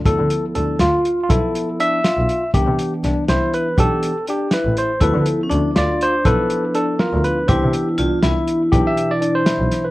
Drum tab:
HH |xxxxx|xxxxx|xxxxx|xxxxx|
SD |---o-|---o-|--oo-|---o-|
BD |o----|o----|o----|o----|

HH |xxxxx|xxxxx|xxxxx|xxxxx|
SD |---o-|---o-|---o-|---oo|
BD |o----|o----|o----|o----|